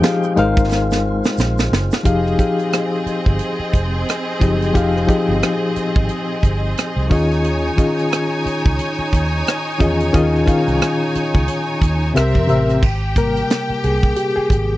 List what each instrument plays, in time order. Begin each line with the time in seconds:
Already playing: reed electric piano F3 D#4 G4 G#4 F5, tonewheel organ F3 G#3 C4 D#4 G5
0.02 reed electric piano F3 D#4 G4 G#4 F5, snare, closed hi-hat, shaker
0.23 shaker
0.36 fingered electric bass G#1, reed electric piano G#3 D#4 A#4 C5 F5, tonewheel organ G#3 F4, closed hi-hat
0.57 kick, shaker
0.71 snare, shaker
0.91 snare, shaker
1.24 snare, shaker
1.38 fingered electric bass A#1, snare, shaker
1.58 snare, shaker
1.72 fingered electric bass F#1, snare
1.91 snare, shaker
2.03 fingered electric bass F1, reed electric piano F3 D#4 G4 G#4 F5, string section C4 G#4 D#5, kick, closed hi-hat
2.27 cross-stick
2.38 reed electric piano F3 D#4 G4 G#4 F5, kick, closed hi-hat
2.59 closed hi-hat
2.73 cross-stick, closed hi-hat
3.06 muted fingered electric bass stroke, closed hi-hat
3.26 fingered electric bass G1, kick
3.39 closed hi-hat
3.59 muted fingered electric bass stroke
3.73 fingered electric bass F1, kick, closed hi-hat
4.08 cross-stick, closed hi-hat
4.40 fingered electric bass F#1, reed electric piano F3 D#4 G4 G#4 D#5, kick, closed hi-hat
4.62 cross-stick, closed hi-hat
4.74 fingered electric bass F1, reed electric piano F3 D#4 G4 G#4 F5, kick, closed hi-hat
4.97 cross-stick
5.07 reed electric piano F3 D#4 G4 G#4 D#5, kick, closed hi-hat
5.28 fingered electric bass G1
5.42 cross-stick, closed hi-hat
5.76 muted fingered electric bass stroke, closed hi-hat
5.96 fingered electric bass G#1, kick
6.09 closed hi-hat
6.43 fingered electric bass G1, kick, closed hi-hat
6.77 cross-stick, closed hi-hat
6.96 fingered electric bass C2
7.10 fingered electric bass D#2, reed electric piano D#3 C#4 F4 G#4 D#5, string section D#4 C#5 G#5, kick, open hi-hat
7.31 cross-stick, closed hi-hat
7.44 closed hi-hat
7.76 reed electric piano D#3 C#4 F4 G#4 D#5, kick, closed hi-hat
7.99 closed hi-hat
8.12 cross-stick, closed hi-hat
8.46 muted fingered electric bass stroke, closed hi-hat
8.66 fingered electric bass C#2, kick
8.79 closed hi-hat
8.99 muted fingered electric bass stroke
9.13 fingered electric bass D#2, kick, closed hi-hat
9.47 cross-stick, closed hi-hat
9.79 fingered electric bass E2, reed electric piano D#3 C#4 F4 G#4 D#5, kick, closed hi-hat
10.00 closed hi-hat
10.13 fingered electric bass D#2, reed electric piano D#3 C#4 F4 G#4 D#5, kick, closed hi-hat
10.35 cross-stick
10.46 reed electric piano D#3 C#4 F4 G#4 F5, kick, closed hi-hat
10.68 fingered electric bass C2, closed hi-hat
10.81 cross-stick, closed hi-hat
11.15 muted fingered electric bass stroke, closed hi-hat
11.35 fingered electric bass C#2, kick
11.48 closed hi-hat
11.82 fingered electric bass D#2, kick, closed hi-hat
12.14 fingered electric bass C2, reed electric piano C3 C4 G4 A#4 E5, string section C4 A#4 E5, cross-stick, closed hi-hat
12.35 fingered electric bass F2, kick
12.47 fingered electric bass A1, reed electric piano C3 C4 G4 A#4 E5, closed hi-hat
12.69 cross-stick, closed hi-hat
12.83 fingered electric bass G#1, string section G4 G5, kick, crash
13.15 reed electric piano C3 G3 A#3 A#4, kick, closed hi-hat
13.37 closed hi-hat
13.50 snare, closed hi-hat
13.70 muted fingered electric bass stroke
13.84 fingered electric bass C2, reed electric piano G#4, closed hi-hat
14.03 kick
14.16 reed electric piano G4, closed hi-hat
14.36 reed electric piano G#4, muted fingered electric bass stroke
14.50 fingered electric bass G#1, kick, closed hi-hat